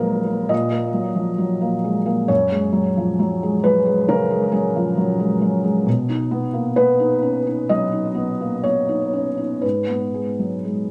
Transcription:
felt piano
Already playing: D#2 F3 F#3 A#3 A#4 B4 C#5 D#5 F5
0.00 G#3
0.26 A#3
0.49 A#2 D#5
0.72 A#3
0.94 F#3
1.16 F3
1.38 F#3
1.61 A#3
1.84 G#3
2.06 A#3
2.28 F#2 C#5
2.51 G#3
2.73 F#3
2.97 F3
3.19 F#3
3.43 G#3
3.64 F#3 B4
3.86 G#3
4.09 C#3 A#4
4.31 G#3
4.52 F#3 G#4
4.76 F3
4.97 F#3
5.19 G#3
5.41 F#3
5.64 G#3
5.87 B2
6.09 D#4
6.31 B3
6.53 A#3
6.76 B3 B4
7.00 D#4
7.22 C#4
7.47 D#4
7.69 F#3 D#5
7.92 D#4
8.15 B3
8.41 A#3
8.64 B3 C#5
8.89 D#4
9.13 C#4
9.37 D#4
9.61 G#2 B4
9.88 B3
10.14 G#3
10.39 F#3
10.65 G#3

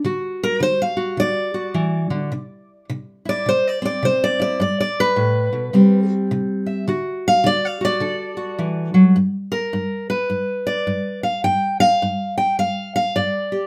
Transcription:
steel-string acoustic guitar
0.05 D3 F#4
0.43 A#4
0.60 D3 C5
0.82 F5
0.97 F#4
1.17 D3 D5
1.54 F#4
1.74 E3
2.10 D3
2.32 C3
2.90 C3
3.25 E4 D5
3.46 C3 C5
3.67 D5
3.82 C4 D5
4.03 C3 C5
4.24 D5
4.39 E4 D5
4.60 G2 D5
4.80 D5
5.00 B4
5.16 A2
5.53 B2
5.73 C3 G3 C4
6.31 C3
6.66 E5
6.88 D3 F#4
7.28 F5
7.44 D3 D5
7.65 F5
7.81 F#4 D5
8.00 D3 A4
8.37 F#4
8.59 E3
8.94 F#3
9.16 G2
9.52 A#4
9.73 G2
10.10 B4
10.30 G2
10.67 D5
10.87 G2
11.23 F5
11.44 G2 G5
11.80 F5
12.02 G2
12.38 G5
12.59 G2 F5
12.96 F5
13.16 G2 D5
13.52 G4

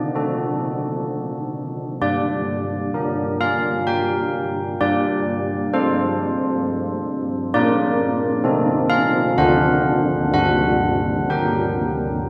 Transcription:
church bells
Already playing: D4 D5
0.15 F#4 A4
2.01 G3 D5
2.94 D4 A#4
3.41 F5
3.87 G5
4.81 G3 D5
5.74 F4 A4 C5
7.54 A#3 F4 A#4 D5
8.44 C4 D#4 A4
8.90 F5
9.38 D3 D4 C5 F#5
10.34 G3 F#5
11.30 D4 A#4 G5

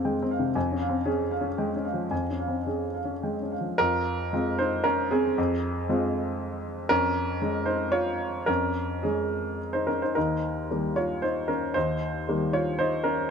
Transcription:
grand piano
Already playing: F2 A#3 C4 G#4 F5 G#5
0.05 G#3 G5
0.22 C4
0.31 F5
0.39 C3
0.55 F2 G#5
0.72 C#4
0.80 F5
0.89 C4
1.05 C#4 G#4
1.31 F5
1.41 C#4
1.58 G#3 G5
1.76 C#4
1.85 F5
1.94 F3
2.11 F2 G#5
2.30 C#4
2.39 F5
2.48 C4
2.67 C#4 G#4
2.95 F5
3.05 C#4
3.23 G#3 G5
3.42 C#4
3.52 F5
3.61 F3
3.78 F2 F4 A#4
4.33 G#3 C4 F4
4.59 D#4 C5
4.84 C#4 A#4
5.11 C4 G#4
5.38 F2
5.89 G#3 C4 F4
6.89 F2 C#4 A#4
7.42 G#3 C#4
7.66 D#4 C5
7.92 F4 C#5
8.46 F2 C#4 A#4
9.03 G#3 C#4 G#4
9.73 D#4 C5
9.87 C#4 A#4
10.02 D#4 C5
10.15 D#2 D#4 A#4
10.70 D#3 G3 A#3
10.96 F4 C#5
11.22 D#4 C5
11.48 C#4 A#4
11.74 D#2 D#4 C5
12.28 D#3 G3 A#3
12.53 F4 C#5
12.79 D#4 C5
13.04 C#4 A#4

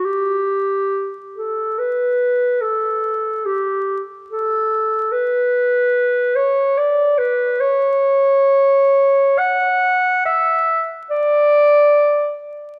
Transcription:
clarinet
0.05 G4
1.35 A4
1.79 B4
2.61 A4
3.46 G4
4.31 A4
5.12 B4
6.35 C#5
6.78 D5
7.18 B4
7.60 C#5
9.38 F#5
10.25 E5
11.10 D5

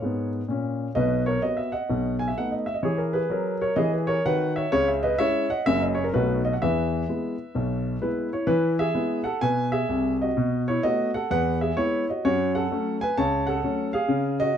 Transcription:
grand piano
Already playing: A#4 C#5
0.02 G#2 B3
0.48 A#2 C#4
0.95 B1 B2 B4 D#5
1.26 A#4 C#5
1.42 B3 F#4 D#5
1.57 E5
1.72 D#5 F#5
1.89 B1 B2
2.19 G#5
2.28 E5
2.37 A3 B3 D#4 F#5
2.52 D#5
2.66 E5
2.74 D#5
2.83 E3 G#4 C#5
2.98 A#4
3.13 G#4 B4
3.30 F#3 A#4
3.62 A#4 C#5
3.76 E3 G#4 D#5
3.92 B4
4.07 A#4 C#5
4.26 D#3 F#4 B4 F#5
4.56 C#5 E5
4.72 C#2 C#3 C#5
4.88 E5
5.03 B4 D#5
5.18 G#3 C#4 E4 C#5 E5
5.50 D#5 F#5
5.66 F#1 F#2 A#3 C#4 F#4 E5
5.81 D#5
5.95 C#5
6.04 A#4
6.14 B1 B2 A3 B3 D#4 F#4 B4
6.45 D#5
6.53 F#5
6.62 E2 E3 B4 E5
7.09 G#3 B3 E4
7.55 B1 B2
8.02 G#3 B3 E4 B4
8.33 E4 C#5
8.47 E3 E4 B4
8.79 G#4 E5
8.95 G#3 B3 E4
9.24 A4 F#5
9.41 B2 B4 G#5
9.72 G#4 E5
9.89 C2 C3
10.22 F#4 D#5
10.37 B2
10.68 E4 C#5
10.83 A3 B3 F#4 D#5
11.14 A4 F#5
11.31 E2 B4 F#5
11.61 G#4 E5
11.77 G#3 B3 E4 C#5
12.10 F#4 D#5
12.25 F#2 F#4 C#5
12.55 A4 F#5
12.71 F#3 A3 C#4
13.01 B4 G#5
13.17 C#2 C#5 A5
13.47 A4 F#5
13.63 F#3 A3 C#4
13.93 G#4 F5
14.08 C#3
14.40 F#4 D#5

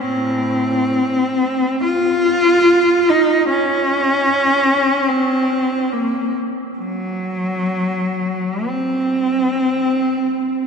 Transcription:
cello
0.03 A2 C4
1.84 F4
3.10 D#4
3.49 C#4
5.08 C4
5.93 A#3
6.79 F#3
8.66 C4

